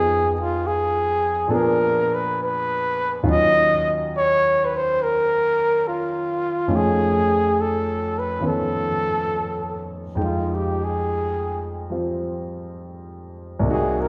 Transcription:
Already playing: F2 F3 B3 D#4 G#4
0.40 F4
0.67 G#4
1.47 A#2 F3 B3 D4 A4
1.51 G#4 A#4
2.14 B4
2.43 B4
3.23 D#2 D#3 F#3 C#4 F4
3.31 D#5
4.17 C#5
4.65 B4
4.77 C5
5.03 A#4
5.88 F4
6.67 F2 F3 A3 C#4 D#4
6.76 G#4
7.61 A4
8.19 B4
8.40 D#3 F3 B3 C#4 F4
8.47 A4
10.15 F2 F3 G#3 D#4 G5
10.24 F4
10.54 G4
10.84 G#4
11.89 F3 G3 C4 F4
13.59 C2 C3
13.65 A#3 D#4
13.71 F#4 G#4
14.01 A#4

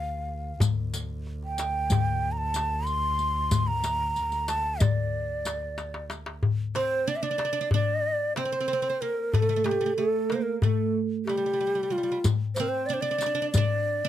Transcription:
Already playing: D2 F5
0.28 darbuka ka
0.60 D2, riq, darbuka dum
0.94 riq
1.27 darbuka ka
1.42 G5, darbuka ka
1.58 riq, darbuka tek
1.90 riq, darbuka dum
2.32 A#5
2.38 A5
2.54 riq, darbuka tek
2.86 C6, riq
3.19 riq, darbuka ka
3.51 riq, darbuka dum
3.67 A#5
3.84 riq, darbuka tek
4.16 riq
4.32 riq, darbuka ka
4.48 A5, riq, darbuka tek
4.80 D5, riq, darbuka dum
5.45 riq, darbuka tek
5.78 riq, darbuka tek
5.94 darbuka ka
6.10 riq, darbuka tek
6.26 darbuka ka
6.43 darbuka dum
6.75 C4 C5, darbuka tek
7.07 D4 D5, darbuka ka
7.16 E5
7.23 D4 D5
7.31 D4
7.38 D4, darbuka tek
7.45 D4
7.53 D4
7.61 D4
7.71 D4 D5, darbuka dum
8.36 C4 C5, darbuka tek
8.45 C4
8.52 C4
8.61 C4
8.68 C4
8.73 C4
8.82 C4
8.90 C4
9.01 A#3 A#4
9.33 A3 A4, darbuka dum
9.42 A3
9.49 A3
9.56 A3
9.64 A3 G4, darbuka tek
9.71 A3
9.81 A3
9.86 A3
9.97 A3 A4, darbuka ka
10.30 A#3 A#4, darbuka tek
10.35 C5
10.42 A#4
10.61 A3 A4, darbuka dum
11.26 G3 G4, darbuka tek
11.37 G3
11.46 G3
11.53 G3
11.61 G3
11.67 G3
11.75 G3
11.83 G3
11.90 G3 F4
11.98 G3
12.03 G3
12.12 G3
12.24 riq, darbuka dum
12.55 C5, riq, darbuka tek
12.60 C4 A#4
12.68 C5
12.86 D4 D5, riq
12.90 C5, darbuka ka
13.01 D4 D5
13.11 D4
13.18 D4, riq, darbuka tek
13.26 D4
13.35 D4
13.42 D4
13.51 D5, riq, darbuka dum
13.57 D4
14.05 D4

